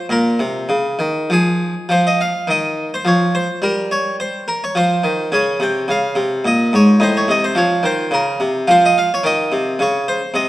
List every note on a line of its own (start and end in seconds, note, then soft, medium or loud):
0.09 0.38 A#2 medium
0.09 1.31 A#4 medium
0.39 0.68 C3 medium
0.69 0.97 C#3 medium
0.99 1.28 D#3 medium
1.30 1.73 F3 medium
1.30 1.91 G#4 medium
1.89 2.31 F3 medium
1.89 2.05 C5 medium
2.07 2.20 D#5 medium
2.21 2.49 F5 medium
2.47 2.89 D#3 medium
2.47 2.92 D#5 medium
2.94 3.07 C5 medium
3.05 3.46 F3 medium
3.05 3.35 C#5 medium
3.35 3.58 C5 medium
3.62 4.43 G3 medium
3.62 3.87 A#4 medium
3.91 4.15 C#5 medium
4.20 4.47 C5 medium
4.48 4.61 A#4 medium
4.64 4.76 C#5 medium
4.75 5.02 F3 medium
4.75 5.32 C5 medium
5.04 5.30 D#3 medium
5.32 5.58 C#3 medium
5.32 6.97 C#4 soft
5.32 5.57 C#5 medium
5.60 5.87 C3 medium
5.60 5.85 G5 medium
5.88 6.15 C#3 medium
5.88 6.46 F5 medium
6.15 6.42 C3 medium
6.45 6.71 A#2 medium
6.45 6.74 D#5 medium
6.73 7.00 G#2 medium
6.73 6.98 C#5 medium
7.00 7.27 A2 medium
7.00 8.08 D#4 soft
7.00 7.16 C5 medium
7.17 7.30 C#5 medium
7.28 7.55 C3 medium
7.28 7.44 D#5 medium
7.44 7.58 C5 medium
7.55 7.82 F3 medium
7.55 7.85 C#5 medium
7.83 8.10 D#3 medium
7.83 8.09 C5 medium
8.11 8.38 C#3 medium
8.11 8.41 A#4 medium
8.40 8.66 C3 medium
8.68 9.08 F3 medium
8.68 9.75 F4 soft
8.68 8.83 C5 medium
8.86 8.98 D#5 medium
8.98 9.11 F5 medium
9.14 9.26 C#5 medium
9.23 9.50 D#3 medium
9.23 9.72 D#5 medium
9.52 9.78 C3 medium
9.79 10.19 C#3 medium
9.79 10.04 C#5 medium
10.08 10.31 C5 medium
10.34 10.49 C3 medium
10.34 10.49 D#5 medium